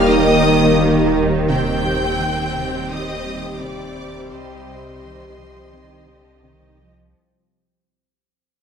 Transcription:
Already playing: D#1 D#2 D#3 G3 A#3 D#4 G4 A#4
0.08 D#4 D#5 D#6
0.43 A#3
0.78 D#3
1.49 C3 G3 C4 G4 C5 G5 G6
1.85 G3
2.21 D#3
2.56 C3
2.90 C4 D#5 D#6
3.26 G3
3.61 C3 D5 D6
4.32 C2 C3 C5 D#5 C6
4.67 G3
5.03 D#3
5.38 C3 F3
5.74 D#3 C4
6.08 D3 G3
6.44 C3 D#3
6.79 F3

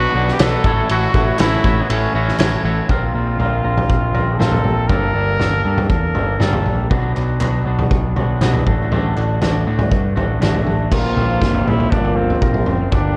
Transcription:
Already playing: B2 F#3 B3 D4 F#4 B4 D5 F#5 D6
0.14 B1 B2 F#3 B3 D4 F#4 B4
0.28 snare
0.33 G4
0.39 B1 B2 F#3 B3 D4 F#4 A4 B4, snare, clap, ride bell
0.63 A1 A2 E3 A3 C#4 E4 F#4 A4 C#5 E5 C#6, kick
0.89 A1 A2 E3 A3 C#4 E4 F#4 A4 C#5, ride bell
1.14 A1 A2 E3 A3 C#4 E4 F#4 A4 C#5, kick
1.38 A1 A2 E3 A3 C#4 E4 F#4 A4 C#5, snare, clap, ride bell
1.64 A1 A2 E3 A3 C#4 E4 F#4 A4 C#5, kick
1.83 B3
1.88 A1 A2 E3 A3 C#4 E4 F#4 A4 C#5, ride bell
2.13 A1 A2 E3 A3 C#4 E4 F#4 A4 C#5
2.29 snare
2.39 A1 A2 E3 A3 C#4 E4 F#4 A4 C#5, snare, clap, ride bell
2.63 A1 A2 E3 A3 C#4 E4 F#4 A4 C#5
2.89 A#1 A#2 A#3 C4 F4 A#4, kick, floor tom
3.15 A#1 C4 F4 A#4
3.39 A#1 A#3 C4 F4 A#4, floor tom
3.64 A#1 A#3 C4 F4 A#4
3.77 floor tom, mid tom
3.90 A#1 F4, kick
4.14 A#1 C4 F4 A#4, floor tom
4.36 A#1 A#3 C4 A4, mid tom
4.41 F3 F4 A#4, snare
4.52 floor tom, mid tom
4.64 A#1 A#3, mid tom
4.88 G1 G2 G3 A#3 D4 A#4, kick, floor tom
4.92 A4
5.14 G1 A#3 D4 A4
5.39 G1 G3 A#3 D4 A4, snare, floor tom
5.65 G2 A#3 D4 A4
5.77 floor tom, mid tom
5.89 E2 A4 A#4, kick
6.15 G1 A#3 D4 A4, floor tom
6.39 G1 G3 A#3 D4 A4, snare, mid tom
6.53 floor tom, mid tom
6.65 A#1 A#3, mid tom
6.89 B1 B2 F#3 B3 D4 F#4, kick, floor tom
7.14 B1 B3 D4 F#4, clap
7.40 B1 F#3 B3 D4 F#4, clap, floor tom
7.65 B1 B3 D4 F#4
7.79 floor tom, mid tom
7.91 B1 F#4, kick
8.16 B1 B3 D4 F#4, floor tom
8.41 B1 B2 F#3 B3 D4 F#4, snare, clap, mid tom
8.53 floor tom, mid tom
8.66 A1 A2 D3 A3 D4 F#4, kick, mid tom
8.90 A1 A2 D3 A3 D4 F#4, floor tom
9.16 A1 A3 D4 F#4, clap
9.41 A1 D3 A3 D4 F#4, snare, clap, floor tom
9.67 A2 A3 D4 F#4
9.79 floor tom, mid tom
9.91 G2 F#4, kick
10.16 A1 A3 D4 F#4, floor tom
10.40 A1 A2 D3 A3 D4 F#4, snare, clap, mid tom
10.54 floor tom, mid tom
10.66 A1 A3, mid tom
10.90 A#1 A#2 F3 A#3 C4 F4, kick, floor tom, crash
11.16 A#1 C4, floor tom
11.42 G1 A#3, kick, snare
11.54 floor tom
11.66 A#1 E4 F4, floor tom, mid tom
11.80 floor tom
11.91 G1 A#3 D4, kick, floor tom
12.05 floor tom
12.16 C4 F4
12.30 floor tom
12.41 A#1 C4 A#4, kick
12.54 mid tom
12.66 F#1 C4, floor tom
12.92 G1 G2 D3 G3 A#3 D4 G4, kick, floor tom

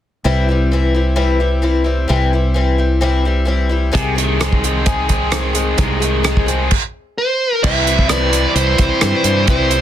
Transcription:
0.24 C2 C3 E3 G3 C4 E4
0.49 G3 C4 E4
0.72 E3 G3 C4 E4
0.94 G3 C4 E4
1.16 C3 E3 G3 C4 E4
1.40 G3 C4 E4
1.62 E3 G3 C4 E4
1.84 G3 C4 E4
2.08 C2 C3 E3 G3 C4 E4
2.33 G3 C4 E4
2.54 E3 G3 C4 E4
2.78 G3 C4 E4
3.01 C3 E3 G3 C4 E4
3.25 G3 C4 E4
3.45 E3 G3 C4 E4
3.69 G3 C4 E4
3.92 C2 C3 D#3 G#3 C4 G#4, kick, closed hi-hat
4.15 D#3 G#3 C4 G#4, closed hi-hat
4.39 D#3 G#3 C4 G#4, cross-stick, closed hi-hat
4.53 kick
4.63 G#3 C4 G#4, closed hi-hat
4.86 C3 D#3 G#3 C4 G#4, kick, closed hi-hat
5.09 G#3 C4 G#4, kick, closed hi-hat
5.30 D#3 G#3 C4 G#4, cross-stick, closed hi-hat
5.53 G#3 C4 G#4, closed hi-hat
5.77 C2 C3 D#3 G#3 C4 G#4, kick, closed hi-hat
6.00 D#3 G#3 C4 G#4, closed hi-hat
6.23 D#3 G#3 C4 G#4, cross-stick, closed hi-hat
6.37 kick
6.46 G#3 C4 G#4, closed hi-hat
6.71 kick, crash
7.18 C5
7.63 C2 C3 E3 G3 C4 E4 E5, kick, crash
7.86 G3 C4 E4, closed hi-hat
7.99 kick
8.09 C3 E3 G3 C4 E4 D5, cross-stick, closed hi-hat
8.33 C3 E3 G3 C4 E4, closed hi-hat
8.55 C2 E3 G3 C4 E4 C5, closed hi-hat
8.78 C2 G3 C4 E4 C5, kick, closed hi-hat
9.01 G2 C3 E3 G3 C4 E4, cross-stick, closed hi-hat
9.24 G2 G3 C4 E4, closed hi-hat
9.48 C2 C3 E3 G3 C4 E4 C5, kick, closed hi-hat
9.71 G3 C4 E4, closed hi-hat

